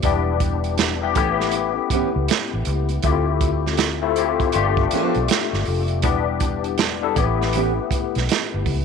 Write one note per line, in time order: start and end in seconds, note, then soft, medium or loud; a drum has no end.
0.03 1.17 E1 loud
0.03 0.76 G3 medium
0.03 0.76 B3 medium
0.03 0.76 D4 medium
0.03 0.76 E4 medium
0.03 0.77 G4 medium
0.03 kick loud
0.03 closed hi-hat medium
0.40 kick medium
0.40 closed hi-hat medium
0.64 closed hi-hat soft
0.78 snare loud
0.78 closed hi-hat medium
1.01 1.12 G3 medium
1.01 1.13 B3 medium
1.01 1.13 D4 medium
1.01 1.13 E4 medium
1.01 1.13 G4 medium
1.15 1.78 A1 medium
1.15 2.38 A3 medium
1.15 2.38 B3 medium
1.15 2.38 C#4 medium
1.15 2.38 E4 medium
1.15 2.39 G4 medium
1.15 kick loud
1.15 closed hi-hat medium
1.41 snare soft
1.52 closed hi-hat medium
1.56 muted nylon-string guitar stroke soft
1.90 2.08 E3 medium
1.90 2.09 B3 medium
1.90 muted fingered electric bass stroke soft
1.90 kick medium
1.90 closed hi-hat medium
1.94 2.09 C#4 medium
1.94 2.09 G4 medium
2.16 2.27 C#2 medium
2.28 snare loud
2.28 closed hi-hat medium
2.53 2.64 A1 medium
2.65 2.97 C#2 medium
2.65 closed hi-hat medium
2.89 closed hi-hat soft
3.03 4.36 D2 loud
3.03 3.76 A3 medium
3.03 3.76 C4 medium
3.03 3.76 E4 medium
3.03 3.77 F4 medium
3.03 3.77 G4 medium
3.03 kick loud
3.03 closed hi-hat medium
3.41 kick medium
3.41 closed hi-hat medium
3.66 snare soft
3.77 snare loud
3.77 closed hi-hat medium
4.02 4.13 A3 medium
4.02 4.13 C4 medium
4.02 4.13 E4 medium
4.02 4.13 F4 medium
4.02 4.14 A4 medium
4.16 4.52 A3 medium
4.16 4.54 C4 medium
4.16 4.54 E4 medium
4.16 4.53 F4 medium
4.16 4.54 G4 medium
4.16 closed hi-hat medium
4.40 kick medium
4.40 closed hi-hat soft
4.52 4.85 G1 medium
4.52 5.75 A3 medium
4.52 5.76 B3 medium
4.52 5.76 D4 medium
4.52 5.76 F4 medium
4.52 5.76 G4 medium
4.52 closed hi-hat medium
4.56 muted nylon-string guitar stroke soft
4.77 kick medium
4.91 5.17 F3 medium
4.91 5.17 B3 medium
4.91 5.17 D4 medium
4.91 muted fingered electric bass stroke soft
4.91 closed hi-hat medium
4.95 5.18 A4 medium
5.14 5.27 B1 medium
5.14 closed hi-hat soft
5.28 snare loud
5.28 closed hi-hat medium
5.53 5.64 G1 medium
5.53 snare soft
5.65 6.05 F1 medium
5.65 open hi-hat soft
5.88 closed hi-hat soft
6.02 7.13 E1 loud
6.02 6.75 G3 medium
6.02 6.76 B3 medium
6.02 6.76 D4 medium
6.02 6.76 E4 medium
6.02 6.76 G4 medium
6.02 kick loud
6.02 closed hi-hat medium
6.40 kick medium
6.40 closed hi-hat medium
6.64 closed hi-hat soft
6.78 snare loud
6.78 closed hi-hat medium
7.01 7.12 G3 medium
7.01 7.13 B3 medium
7.01 7.13 D4 medium
7.01 7.13 E4 medium
7.01 7.13 A4 medium
7.15 7.78 A1 medium
7.15 8.38 A3 medium
7.15 8.38 B3 medium
7.15 7.24 C4 medium
7.15 8.38 E4 medium
7.15 8.39 G4 medium
7.15 kick loud
7.15 closed hi-hat medium
7.23 8.41 C#4 medium
7.42 snare soft
7.53 7.71 E3 medium
7.53 7.71 B3 medium
7.53 7.72 C#4 medium
7.53 7.71 G4 medium
7.53 closed hi-hat medium
7.91 muted fingered electric bass stroke soft
7.91 kick medium
7.91 closed hi-hat medium
8.15 8.27 B1 medium
8.15 snare soft
8.15 closed hi-hat soft
8.29 snare loud
8.29 closed hi-hat medium
8.54 8.65 G1 medium
8.66 8.85 C#2 medium
8.66 kick medium
8.66 open hi-hat soft